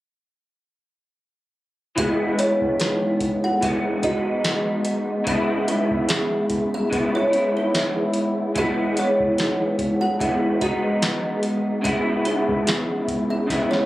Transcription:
1.96 E3 G#3 B3 G#4 E5, kick, closed hi-hat
2.39 E4 C#5, closed hi-hat
2.62 kick
2.80 D#4 B4, snare, closed hi-hat
3.20 kick, closed hi-hat
3.44 A4 F#5
3.61 E3 G#3 B3 G#4 E5, kick, closed hi-hat
4.03 G#3 B3 D#4 F#4 D#5, kick, closed hi-hat
4.44 snare, closed hi-hat
4.85 closed hi-hat
5.24 C#3 G#3 B3 G#4 E5, kick, closed hi-hat
5.29 E4
5.68 D#4 B4, closed hi-hat
5.91 kick
6.09 B3 G#4, snare, closed hi-hat
6.50 kick, closed hi-hat
6.74 G#4 E5
6.90 C#3 G#3 B3 E4, kick, closed hi-hat
7.15 E4 C#5
7.30 G#3 B3 E4, closed hi-hat
7.57 D#4 B4
7.75 snare, closed hi-hat
8.14 closed hi-hat
8.55 E3 G#3 E5, kick, closed hi-hat
8.59 B3 G#4
8.97 E4 C#5, closed hi-hat
9.20 kick
9.38 D#4 B4, snare, closed hi-hat
9.79 kick, closed hi-hat
10.01 A4 F#5
10.20 E3 G#3 B3 G#4 E5, kick, closed hi-hat
10.61 G#3 B3 D#4 F#4 D#5, kick, closed hi-hat
11.02 snare, closed hi-hat
11.43 closed hi-hat
11.82 C#3 G#3 B3 G#4 E5, kick, closed hi-hat
11.87 E4
12.25 D#4 B4, closed hi-hat
12.49 kick
12.67 B3 G#4, snare, closed hi-hat
13.08 kick, closed hi-hat
13.30 G#4 E5
13.47 C#3 G#3 B3 E4, kick, closed hi-hat
13.51 snare
13.71 E4 C#5, snare

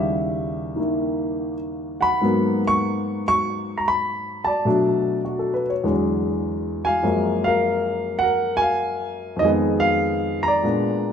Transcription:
Already playing: D#2 C#3 G3 E4 G4 E5
0.76 D#3 A#3 E4
2.01 F#5 B5
2.21 G#2 F#3 A#3 B3
2.67 C#6
3.28 C#6
3.78 A#5
3.88 B5
4.45 D5 A5
4.65 B2 F#3 A3 D4
5.25 F#4
5.39 A4
5.54 B4
5.70 C#5
5.84 E2 D3 F#3 G#3
6.85 F5 G#5
7.03 F#2 F3 G#3 A#3
7.44 A#4 F5
8.19 F#5
8.23 A#4
8.57 G#5
8.62 F5
9.36 F2 D#5
9.41 D#3 G#3 G#4
9.48 B3
9.80 F5
10.43 A#5
10.48 D5
10.63 A#2 G#3 B3 D4

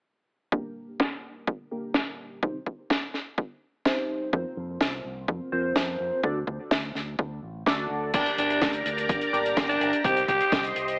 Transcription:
0.52 A#3 D4 G4 A#4, kick
1.00 kick, snare
1.47 kick
1.71 A#3 D4 G4 A#4
1.94 kick, snare
2.43 C4 D#4 G4 C5, kick
2.66 kick
2.90 kick, snare
3.14 snare
3.38 kick
3.85 C4 D#4 G4 C5, kick, snare
4.33 F2 C4 F4 A#4 C5, kick
4.57 F2
4.81 C2, kick, snare
5.04 C2
5.28 F2, kick
5.52 F2 C4 F4 A#4 C5
5.76 F2, kick, snare
6.00 F2
6.23 D2 D4 F#4 A4 D5, kick
6.47 D2, kick
6.71 D2, kick, snare
6.95 D2, snare
7.19 D2, kick
7.43 A1
7.66 D2 D4 F#4 A4 D5, kick, snare
7.90 D2
8.14 G1 D4 G4 A#4 D5 A#5, kick, closed hi-hat, crash
8.26 closed hi-hat
8.38 G1 D4, closed hi-hat
8.50 closed hi-hat
8.62 D2, kick, snare, closed hi-hat
8.73 closed hi-hat
8.86 D2, closed hi-hat
8.98 closed hi-hat
9.09 G1, kick, closed hi-hat
9.21 closed hi-hat
9.33 G1 D4 G4 A#4 D5, closed hi-hat
9.46 closed hi-hat
9.57 G1, kick, snare, closed hi-hat
9.69 D4, closed hi-hat
9.81 G1, closed hi-hat
9.93 closed hi-hat
10.04 C2 C4 D#4 G4 C5 D#5 C6, kick, closed hi-hat
10.17 closed hi-hat
10.28 C2 G4, kick, closed hi-hat
10.41 closed hi-hat
10.52 C2, kick, snare, closed hi-hat
10.64 closed hi-hat
10.76 C2, closed hi-hat
10.88 closed hi-hat

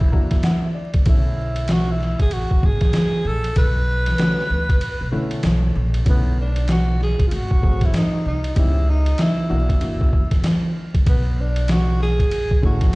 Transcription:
Already playing: E4
0.01 kick
0.12 E3 A#3 D4 F#4 A#5, kick
0.31 kick, snare, ride
0.43 F#5, snare, hi-hat pedal, ride
0.63 E5
0.75 D5
0.94 kick, ride
1.06 B1 D3 A3 C#4 E4, kick, ride
1.56 ride
1.68 F#4, snare, hi-hat pedal, ride
1.91 E4
2.01 snare
2.19 A1 G#4, kick, ride
2.31 F#4, ride
2.51 kick
2.63 G#1 G#4, kick
2.81 kick, snare, ride
2.93 snare, hi-hat pedal, ride
3.25 A#1 A4
3.44 ride
3.56 B1 B4, kick, ride
4.06 snare, ride
4.18 D3 A3 C#4 F#4, snare, hi-hat pedal, ride
4.39 snare
4.50 D2
4.69 kick, ride
4.81 ride
5.01 B1
5.12 B2 D3 A3 C#4 E4
5.31 ride
5.43 B1, snare, hi-hat pedal, ride
5.75 A#1
5.94 ride
6.05 B1 D3 A3 C#4 E4, kick, ride
6.09 B3
6.41 D4
6.56 ride
6.68 F#4, snare, hi-hat pedal, ride
7.01 G#4, snare
7.19 A1, kick, ride
7.27 F4
7.31 G#1 F#4, ride
7.51 kick
7.61 G#1 F#3 A3 C4 G#4, kick
7.81 E4, kick, snare, ride
7.94 snare, hi-hat pedal, ride
7.98 D#4
8.26 C2 D#4
8.44 ride
8.55 C#2 E3 B3 C#4 G4, kick, ride
8.59 E4
8.90 D#4
9.06 ride
9.18 E4, snare, hi-hat pedal, ride
9.49 B1 E3 A#3 D4 F#4
9.69 kick, ride
9.81 F#1 E3 A#3 D4 F#4, ride
10.01 kick
10.13 kick
10.31 kick, snare, ride
10.44 snare, hi-hat pedal, ride
10.94 kick, ride
11.06 B1 B3, kick, ride
11.41 D4
11.56 ride
11.68 F#4, snare, hi-hat pedal, ride
12.01 G#4, snare
12.19 A1, kick, ride
12.31 ride
12.51 kick
12.62 G#1 D3 A3 C#4 E4 F#4, kick
12.81 kick, snare, ride

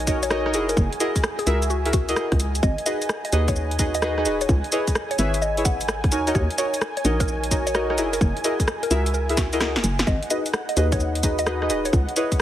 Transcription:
Already playing: A#1 G#5
0.07 D#4 F#4 A#4 C#5 D#5, kick, closed hi-hat, shaker
0.23 C#5, closed hi-hat, shaker
0.30 D#4 F#4 A#4 C#5 D#5, cross-stick, shaker
0.46 D#4 F#4 A#4 C#5 D#5, cross-stick
0.54 F#1 E4 F#4 G#4 A#4 D#5, closed hi-hat, shaker
0.69 A#4, closed hi-hat, shaker
0.77 F#1, kick, shaker
0.93 closed hi-hat
1.00 E4 F#4 G#4 A#4 D#5, closed hi-hat, shaker
1.16 kick, closed hi-hat, shaker
1.24 cross-stick, shaker
1.39 G#4, closed hi-hat
1.47 C#2 E4 F#4 G#4 A#4 E5, closed hi-hat, shaker
1.62 closed hi-hat, shaker
1.70 F#4, shaker
1.85 E4 F#4 G#4 A#4 E5, closed hi-hat
1.93 F#4, kick, closed hi-hat, shaker
2.09 E4 F#4 G#4 A#4 D#5, closed hi-hat, shaker
2.16 E4 F#4 G#4 A#4 D#5, cross-stick, shaker
2.32 C#2, kick, cross-stick, closed hi-hat
2.40 closed hi-hat, shaker
2.55 closed hi-hat, shaker
2.63 G#1 D#5 G#5, kick, shaker
2.78 closed hi-hat
2.86 D#4 F#4 G#4 B4 D#5, closed hi-hat, shaker
3.02 closed hi-hat, shaker
3.09 cross-stick, shaker
3.25 D#5, closed hi-hat
3.33 D#2 D#4 F#4 G#4 B4 D#5, closed hi-hat, shaker
3.48 C#5, kick, closed hi-hat, shaker
3.56 shaker
3.71 closed hi-hat
3.79 D#4 F#4 G#4 B4 D#5, kick, closed hi-hat, shaker
3.94 D#5, closed hi-hat, shaker
4.02 D#4 F#4 G#4 B4 D#5, cross-stick, shaker
4.18 D#4 F#4 G#4 B4 D#5, cross-stick
4.26 D#1 D#4 F#4 G#4 B4 D#5, closed hi-hat, shaker
4.41 C#5, closed hi-hat, shaker
4.49 C#2, kick, shaker
4.64 closed hi-hat
4.72 E4 G#4 B4 C#5 D#5, closed hi-hat, shaker
4.87 kick, closed hi-hat, shaker
4.95 cross-stick, shaker
5.11 C#5, closed hi-hat
5.19 G#1 E4 G#4 B4 C#5 E5, closed hi-hat, shaker
5.34 closed hi-hat, shaker
5.42 D#5, shaker
5.57 E4 G#4 B4 C#5 E5, closed hi-hat
5.65 F#5, kick, closed hi-hat, shaker
5.81 closed hi-hat, shaker
5.88 cross-stick, shaker
6.04 kick, cross-stick, closed hi-hat
6.12 D#2 D#4 F#4 A#4 C#5 G#5, closed hi-hat, shaker
6.27 D#4 F#4 A#4 C#5 D#5, closed hi-hat, shaker
6.35 D#2 C#5, kick, shaker
6.50 closed hi-hat
6.58 D#4 F#4 A#4 C#5 D#5, closed hi-hat, shaker
6.74 closed hi-hat, shaker
6.82 cross-stick, shaker
6.97 C#5, closed hi-hat
7.05 A#1 D#4 F#4 A#4 C#5 D#5, closed hi-hat, shaker
7.20 A#4, kick, closed hi-hat, shaker
7.28 shaker
7.44 closed hi-hat
7.51 D#4 F#4 A#4 C#5 D#5, kick, closed hi-hat, shaker
7.67 C#5, closed hi-hat, shaker
7.75 D#4 F#4 A#4 C#5 D#5, cross-stick, shaker
7.90 D#4 F#4 A#4 C#5 D#5, cross-stick
7.98 F#1 E4 F#4 G#4 A#4 D#5, closed hi-hat, shaker
8.13 A#4, closed hi-hat, shaker
8.21 F#1, kick, shaker
8.37 closed hi-hat
8.44 E4 F#4 G#4 A#4 D#5, closed hi-hat, shaker
8.60 kick, closed hi-hat, shaker
8.68 cross-stick, shaker
8.83 A#4, closed hi-hat
8.91 C#2 E4 F#4 G#4 A#4 E5, closed hi-hat, shaker
9.06 closed hi-hat, shaker
9.14 A#4, shaker
9.29 E4 F#4 G#4 A#4 E5, closed hi-hat
9.37 F#4, kick, snare, closed hi-hat, shaker
9.53 E4 F#4 G#4 A#4 D#5, closed hi-hat, shaker
9.61 E4 G#4 A#4 D#5, cross-stick, snare, shaker
9.76 E1, snare, closed hi-hat
9.84 F#1, closed hi-hat, shaker
9.99 snare, closed hi-hat, shaker
10.07 G#1 D#5 F#5, kick, shaker
10.23 closed hi-hat
10.30 D#4 F#4 G#4 B4 D#5, closed hi-hat, shaker
10.46 closed hi-hat, shaker
10.54 cross-stick, shaker
10.69 D#5, closed hi-hat
10.77 D#2 D#4 F#4 G#4 B4 D#5, closed hi-hat, shaker
10.92 C#5, kick, closed hi-hat, shaker
11.00 shaker
11.15 closed hi-hat
11.23 D#4 F#4 G#4 B4 D#5, kick, closed hi-hat, shaker
11.39 D#5, closed hi-hat, shaker
11.47 D#4 F#4 G#4 B4 D#5, cross-stick, shaker
11.62 D#4 F#4 G#4 B4 D#5, cross-stick
11.70 D#1 D#4 F#4 G#4 B4 D#5, closed hi-hat, shaker
11.85 C#5, closed hi-hat, shaker
11.93 C#2, kick, shaker
12.09 closed hi-hat
12.16 E4 G#4 B4 C#5 D#5, closed hi-hat, shaker
12.32 kick, closed hi-hat, shaker

